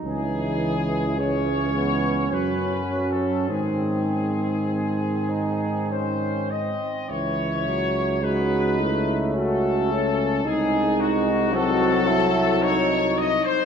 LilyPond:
<<
  \new Staff \with { instrumentName = "Trumpet section" } { \time 3/4 \key cis \minor \tempo 4 = 53 gis'4 cis''4 \tuplet 3/2 { b'4 a'8 } | gis'2 bis'8 dis''8 | cis''4 b'4 a'4 | gis'8 ges'8 a'4 cis''8 ees''16 c''16 | }
  \new Staff \with { instrumentName = "Euphonium" } { \time 3/4 \key cis \minor e2 fis4 | dis2~ dis8 r8 | r4 fis'8 e'8 fis'8 cis'8 | ees'4 c'8 e'8 ees'4 | }
  \new Staff \with { instrumentName = "Flugelhorn" } { \time 3/4 \key cis \minor dis'8. r16 cis'2 | bis4 bis8 dis'8 cis'8 bis8 | e'4 dis'4 cis'4 | ees'4 ges'8 e'8 ees'8. r16 | }
  \new Staff \with { instrumentName = "Trombone" } { \clef bass \time 3/4 \key cis \minor e4 gis8 b8 cis'4 | bis2~ bis8 r8 | e8 fis8 gis8 a4. | gis4 ges4.~ ges16 r16 | }
  \new Staff \with { instrumentName = "Tuba" } { \clef bass \time 3/4 \key cis \minor cis,2 fis,4 | gis,2~ gis,8 r8 | cis,2. | c,2~ c,8. r16 | }
>>